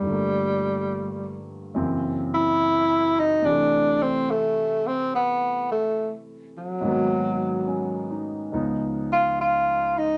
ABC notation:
X:1
M:4/4
L:1/16
Q:"Swing" 1/4=71
K:Ablyd
V:1 name="Tenor saxophone"
G,6 z4 =E4 _E2 | D2 C2 =A,2 C2 =B,2 A,2 z2 ^F,2- | ^F,6 z4 =F2 F2 E2 |]
V:2 name="Grand piano"
z16 | z16 | z4 _D2 E3 z6 z |]
V:3 name="Grand piano" clef=bass
[G,,D,F,=A,B,]8 [^F,,^C,=E,^A,^B,]8 | [C,=E,=A,]16 | [A,,E,_G,B,_C]8 [_D,,_D,F,CE]8 |]